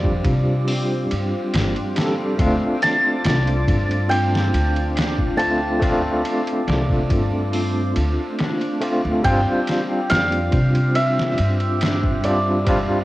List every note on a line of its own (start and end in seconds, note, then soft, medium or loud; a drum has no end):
0.00 0.20 F2 medium
0.00 1.96 G3 medium
0.00 1.97 C4 medium
0.00 1.97 D4 medium
0.00 2.40 F4 loud
0.00 13.04 F4 medium
0.00 9.20 C5 medium
0.00 0.63 D5 loud
0.00 2.34 G5 medium
0.00 9.20 D6 loud
0.04 kick medium
0.25 1.06 C3 medium
0.25 kick medium
0.25 ride medium
0.68 1.08 C4 loud
0.68 open hi-hat medium
1.11 1.31 G2 medium
1.11 ride medium
1.53 1.73 G1 medium
1.53 1.94 D4 medium
1.53 snare loud
1.53 ride medium
1.76 ride soft
1.96 2.18 G3 medium
1.96 2.19 C4 medium
1.96 2.19 D4 medium
1.96 2.20 A4 medium
1.96 snare loud
1.96 ride medium
2.37 2.59 D2 loud
2.37 5.33 A3 medium
2.37 5.34 C4 medium
2.37 2.80 C4 medium
2.37 5.34 D4 medium
2.37 9.21 A5 medium
2.37 kick loud
2.37 ride medium
2.42 5.35 F4 loud
2.82 3.21 C4 medium
2.82 4.76 A5 loud
2.82 snare soft
2.82 ride medium
3.25 3.63 C2 loud
3.25 4.06 D5 loud
3.25 snare loud
3.25 ride medium
3.47 ride soft
3.68 4.50 G2 medium
3.68 kick medium
3.68 ride medium
3.91 ride soft
4.09 4.51 C4 medium
4.09 6.16 G5 loud
4.09 ride medium
4.35 snare medium
4.54 6.21 D2 medium
4.54 ride medium
4.76 ride soft
4.96 5.37 D4 medium
4.96 snare loud
4.96 ride medium
5.19 kick medium
5.37 5.76 A3 medium
5.37 5.76 C4 medium
5.37 5.76 D4 medium
5.37 5.77 F4 medium
5.37 7.31 A5 medium
5.37 ride medium
5.80 8.76 A3 medium
5.80 8.76 C4 medium
5.80 6.22 C4 medium
5.80 8.77 D4 medium
5.80 kick loud
5.80 ride medium
5.84 8.78 F4 loud
6.25 6.63 C4 medium
6.25 ride medium
6.47 ride soft
6.67 7.05 C2 loud
6.67 7.49 D5 medium
6.67 snare loud
6.67 ride medium
6.90 kick medium
7.10 7.92 G2 loud
7.10 kick medium
7.10 ride medium
7.53 7.94 C4 loud
7.53 open hi-hat medium
7.96 8.16 D2 medium
7.96 ride medium
8.39 8.80 D4 medium
8.39 snare loud
8.39 ride medium
8.61 ride soft
8.81 9.19 A3 medium
8.81 9.19 C4 medium
8.81 9.20 D4 medium
8.81 9.20 F4 loud
8.81 ride medium
9.05 9.22 D2 medium
9.22 9.44 G2 medium
9.22 12.18 G3 medium
9.22 12.19 C4 medium
9.22 9.65 C4 loud
9.22 12.20 D4 medium
9.22 13.04 C5 medium
9.22 13.04 G5 medium
9.22 11.31 G5 loud
9.22 12.64 D6 loud
9.22 kick loud
9.22 ride medium
9.27 12.21 F4 loud
9.67 10.06 C4 medium
9.67 snare medium
9.67 ride medium
10.10 10.48 F2 loud
10.10 10.92 D5 medium
10.10 11.01 F5 loud
10.10 snare loud
10.10 ride medium
10.32 ride soft
10.52 11.35 C3 loud
10.52 kick medium
10.52 ride medium
10.75 ride soft
10.95 11.37 C4 loud
10.95 13.04 E5 loud
10.95 ride medium
11.19 snare medium
11.38 13.04 G2 medium
11.38 ride medium
11.60 ride soft
11.81 12.23 D4 medium
11.81 snare loud
11.81 ride medium
12.04 kick medium
12.24 12.62 G3 medium
12.24 12.62 C4 medium
12.24 12.63 D4 medium
12.24 12.63 F4 loud
12.24 13.04 D5 medium
12.24 ride medium
12.64 13.04 G3 medium
12.64 13.04 C4 medium
12.64 13.04 C4 loud
12.64 13.04 D4 medium
12.64 13.04 C6 loud
12.64 kick loud
12.64 ride medium
12.69 13.04 F4 loud